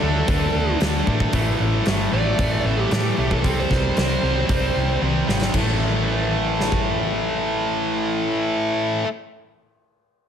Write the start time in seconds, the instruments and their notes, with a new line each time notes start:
Already playing: lead electric guitar A4
0.02 fingered electric bass D2, distorted electric guitar D3 A3 D4
0.27 fingered electric bass D2, distorted electric guitar D3 A3 D4, kick, open hi-hat
0.54 fingered electric bass D2
0.81 fingered electric bass D2, distorted electric guitar D3 A3 D4, snare, open hi-hat
1.07 fingered electric bass A2, distorted electric guitar D3 A3 D4, kick
1.20 kick
1.33 fingered electric bass A1, distorted electric guitar A2 E3 A3, kick, open hi-hat
1.60 fingered electric bass A1
1.86 fingered electric bass G1, distorted electric guitar A2 E3 A3, snare, open hi-hat
2.12 fingered electric bass A1, distorted electric guitar A2 E3 A3, lead electric guitar D5
2.38 fingered electric bass A1, distorted electric guitar A2 E3 A3, kick, open hi-hat
2.64 fingered electric bass A1, lead electric guitar A4
2.80 lead electric guitar G4
2.91 distorted electric guitar A2 E3 A3, fingered electric bass A2, snare, open hi-hat
3.18 fingered electric bass B1, distorted electric guitar A2 E3 A3
3.31 lead electric guitar A4, kick
3.43 fingered electric bass C2, distorted electric guitar C3 G3 C4, kick, open hi-hat
3.60 lead electric guitar C5
3.70 fingered electric bass C2, kick, snare
3.96 fingered electric bass C2, distorted electric guitar C3 G3 C4, lead electric guitar C5, snare, open hi-hat
4.22 fingered electric bass C2, distorted electric guitar C3 G3 C4
4.49 fingered electric bass C2, distorted electric guitar C3 G3 C4, kick, open hi-hat
4.76 fingered electric bass C2
5.01 fingered electric bass C2, distorted electric guitar C3 G3 C4, high tom
5.27 fingered electric bass G#1, distorted electric guitar C3 G3 C4, snare
5.42 snare
5.53 fingered electric bass A1, distorted electric guitar A2 E3, kick, crash
5.57 distorted electric guitar A3
6.60 snare
6.72 kick